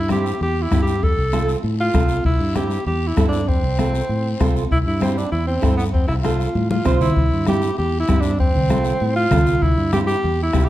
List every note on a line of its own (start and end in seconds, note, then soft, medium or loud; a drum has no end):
0.00 0.31 G2 medium
0.09 0.32 C4 medium
0.09 0.32 E4 medium
0.09 0.32 G4 medium
0.09 0.40 G4 medium
0.09 bombo rim medium
0.09 high conga medium
0.09 short guiro medium
0.26 short guiro medium
0.41 0.65 E2 medium
0.41 0.64 G4 loud
0.41 high conga soft
0.41 long guiro medium
0.63 0.82 E4 medium
0.71 1.03 G2 medium
0.71 0.93 C4 medium
0.71 0.93 E4 medium
0.71 0.94 G4 medium
0.71 bombo low medium
0.71 bombo rim medium
0.71 high conga medium
0.71 short guiro medium
0.82 1.05 G4 medium
0.87 short guiro medium
1.03 1.15 F2 loud
1.03 1.53 A4 loud
1.03 bombo low medium
1.03 high conga soft
1.03 long guiro medium
1.17 1.54 C2 medium
1.32 1.54 C4 medium
1.32 1.54 F4 medium
1.32 1.55 A4 medium
1.32 bombo rim medium
1.32 high conga medium
1.32 short guiro medium
1.49 short guiro medium
1.63 1.88 A2 medium
1.63 high conga soft
1.63 long guiro medium
1.81 2.23 F4 medium
1.93 2.19 C2 medium
1.93 2.16 C4 medium
1.93 2.16 F4 medium
1.93 2.16 A4 medium
1.93 bombo low medium
1.93 bombo rim medium
1.93 high conga medium
1.93 short guiro medium
2.08 short guiro medium
2.24 2.37 C2 medium
2.24 2.57 E4 medium
2.24 bombo low medium
2.24 high conga soft
2.24 long guiro medium
2.40 2.77 G2 medium
2.55 2.77 C4 medium
2.55 2.77 E4 medium
2.55 2.86 G4 medium
2.55 2.77 G4 medium
2.55 bombo rim medium
2.55 high conga medium
2.55 short guiro medium
2.71 short guiro medium
2.85 3.11 E2 medium
2.85 3.09 G4 medium
2.85 high conga soft
2.85 long guiro medium
3.08 3.28 E4 medium
3.16 3.48 G2 medium
3.16 3.38 C4 medium
3.16 3.39 E4 medium
3.16 3.39 A4 medium
3.16 bombo low medium
3.16 bombo rim medium
3.16 high conga medium
3.16 short guiro medium
3.29 3.49 D4 medium
3.33 short guiro medium
3.48 3.60 F2 loud
3.48 4.55 C4 medium
3.48 bombo low medium
3.48 high conga soft
3.48 long guiro medium
3.63 4.00 C2 medium
3.78 4.00 C4 medium
3.78 4.01 F4 medium
3.78 4.01 A4 medium
3.78 bombo rim medium
3.78 high conga medium
3.78 short guiro medium
3.95 short guiro medium
4.09 4.34 A2 medium
4.09 high conga soft
4.09 long guiro medium
4.40 4.65 C2 medium
4.40 4.62 C4 medium
4.40 4.62 F4 medium
4.40 4.62 A4 medium
4.40 bombo low medium
4.40 bombo rim medium
4.40 high conga medium
4.40 short guiro medium
4.56 short guiro medium
4.71 4.83 C2 loud
4.71 4.79 E4 medium
4.71 bombo low medium
4.71 high conga soft
4.71 long guiro medium
4.86 5.23 G2 medium
4.86 5.01 E4 medium
5.00 5.22 C4 medium
5.00 5.19 C4 medium
5.00 5.23 E4 medium
5.00 5.23 G4 medium
5.00 bombo rim medium
5.00 high conga medium
5.00 short guiro medium
5.17 5.31 D4 medium
5.17 short guiro medium
5.32 5.57 E2 medium
5.32 5.46 E4 medium
5.32 high conga soft
5.32 long guiro medium
5.48 5.76 C4 medium
5.62 5.94 G2 medium
5.62 5.84 C4 medium
5.62 5.84 E4 medium
5.62 5.84 A4 medium
5.62 bombo low medium
5.62 bombo rim medium
5.62 high conga medium
5.62 short guiro medium
5.77 5.84 B3 medium
5.77 short guiro medium
5.94 6.06 F2 medium
5.94 6.07 C4 medium
5.94 bombo low medium
5.94 high conga soft
5.94 long guiro medium
6.08 6.46 C2 medium
6.08 6.15 E4 medium
6.08 bombo rim medium
6.23 6.46 C4 medium
6.23 6.67 F4 medium
6.23 6.46 F4 medium
6.23 6.46 A4 medium
6.23 bombo rim medium
6.23 high conga medium
6.23 short guiro medium
6.40 short guiro medium
6.55 6.80 A2 medium
6.55 high conga medium
6.55 long guiro medium
6.70 6.99 F4 medium
6.70 high conga medium
6.85 7.11 C2 medium
6.85 7.07 C4 medium
6.85 7.07 F4 medium
6.85 7.07 C5 medium
6.85 bombo low medium
6.85 bombo rim medium
6.85 low conga medium
6.85 short guiro medium
7.01 7.44 E4 medium
7.01 low conga medium
7.01 short guiro medium
7.16 7.29 C2 loud
7.16 bombo low medium
7.16 high conga soft
7.16 long guiro medium
7.33 7.69 G2 medium
7.47 7.69 C4 medium
7.47 7.69 E4 medium
7.47 7.76 G4 medium
7.47 7.70 G4 medium
7.47 bombo rim medium
7.47 high conga medium
7.47 short guiro medium
7.62 short guiro medium
7.77 8.03 E2 medium
7.77 7.97 G4 medium
7.77 high conga soft
7.77 long guiro medium
8.00 8.22 E4 medium
8.08 8.40 G2 medium
8.08 8.30 C4 medium
8.08 8.30 E4 medium
8.08 8.31 G4 medium
8.08 bombo low medium
8.08 bombo rim medium
8.08 high conga medium
8.08 short guiro medium
8.21 8.39 D4 medium
8.21 short guiro medium
8.39 8.52 F2 medium
8.39 9.12 C4 medium
8.39 bombo low medium
8.39 high conga soft
8.39 long guiro medium
8.55 8.92 C2 medium
8.55 low conga medium
8.69 8.91 C4 medium
8.69 8.92 F4 medium
8.69 8.92 A4 medium
8.69 bombo rim medium
8.69 high conga medium
8.69 short guiro medium
8.84 short guiro medium
9.00 9.26 A2 medium
9.00 high conga soft
9.00 long guiro medium
9.16 9.64 F4 loud
9.31 9.56 C2 medium
9.31 9.53 C4 medium
9.31 9.53 F4 medium
9.31 9.53 A4 medium
9.31 bombo low medium
9.31 bombo rim medium
9.31 high conga medium
9.31 low conga medium
9.31 short guiro medium
9.46 short guiro medium
9.62 9.75 C2 loud
9.62 9.92 E4 medium
9.62 bombo low medium
9.62 high conga soft
9.62 long guiro medium
9.77 10.14 G2 medium
9.93 10.14 C4 medium
9.93 10.15 E4 medium
9.93 10.00 G4 medium
9.93 10.15 G4 medium
9.93 bombo rim medium
9.93 high conga medium
9.93 short guiro medium
10.07 10.41 G4 medium
10.07 short guiro medium
10.23 10.48 E2 medium
10.23 high conga soft
10.23 long guiro medium
10.43 10.66 E4 medium
10.53 10.69 C2 medium
10.53 10.69 C4 medium
10.53 10.69 E4 medium
10.53 10.69 G4 medium
10.53 bombo low medium
10.53 bombo rim medium
10.53 high conga medium
10.53 short guiro medium
10.65 10.69 G4 medium